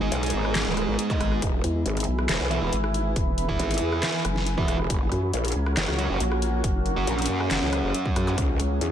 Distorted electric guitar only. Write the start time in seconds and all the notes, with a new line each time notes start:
0.01 G#3 D#4 G#4
2.51 E3 B3 E4
2.62 E3 B3 E4
3.49 E3 B3 E4
4.57 E3 B3 E4
5.98 F#3 C#4 F#4
6.10 F#3 C#4 F#4
6.97 F#3 C#4 F#4